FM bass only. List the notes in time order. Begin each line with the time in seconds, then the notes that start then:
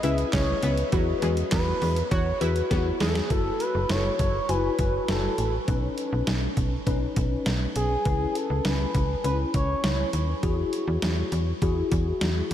0.04 C#2
0.33 C#2
0.63 C#2
0.93 E2
1.22 E2
1.52 E2
1.82 E2
2.11 E2
2.41 E2
2.71 E2
3.00 E2
3.30 F#1
3.75 F#1
3.90 F#1
4.19 F#1
4.49 F#1
4.79 F#1
5.08 F#1
5.38 A1
5.68 B1
6.12 B1
6.27 B1
6.57 B1
6.87 B1
7.17 B1
7.46 B1
7.76 B1
8.05 C#2
8.50 C#2
8.65 C#2
8.95 C#2
9.24 C#2
9.54 C#2
9.84 C#2
10.13 D#2
10.43 E2
10.87 E2
11.02 E2
11.32 E2
11.62 E2
11.92 E2
12.21 E2